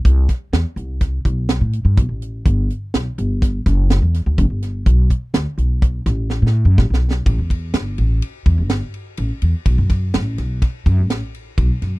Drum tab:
RD |------------------------------|------------------------------|------------------------------|x--x--x--x--x--x--x--x--x--x--|
HH |x--x--x--x--x--x--x--x--x--x--|x--x--x--x--x--x--x--x--x--x--|x--x--x--x--x--x--------------|------------------------------|
SD |---o--o-----o-----o-----------|------o-----o--o--o--o-----o--|------o--------o--o-o---o-o-o-|------o-----------o-----------|
BD |o--o--------o--o--------o-----|o-----------o--o--------o-----|o--o--------o--o--------o-----|o--o-----------o--------------|

RD |x--x--x--x--x--x--x--x--x--x--|
HH |------------------------------|
SD |---o--o--o--o-----o--------o--|
BD |o--o--------o--o--------o-----|